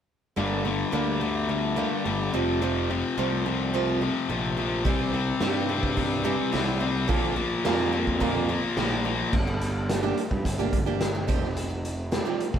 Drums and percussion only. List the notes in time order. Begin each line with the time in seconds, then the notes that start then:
4.84 kick, open hi-hat
5.40 snare, open hi-hat
5.83 kick
5.97 kick, open hi-hat
6.54 snare, open hi-hat
7.09 kick, open hi-hat
7.65 snare, open hi-hat
8.07 kick
8.21 kick, open hi-hat
8.77 snare, open hi-hat
9.33 kick, crash
9.61 closed hi-hat
9.89 snare, closed hi-hat
10.17 closed hi-hat
10.31 kick
10.45 kick, closed hi-hat
10.73 kick, closed hi-hat
11.01 snare, closed hi-hat
11.29 kick, closed hi-hat
11.44 snare
11.57 closed hi-hat
11.85 closed hi-hat
12.12 snare, closed hi-hat
12.40 closed hi-hat
12.54 kick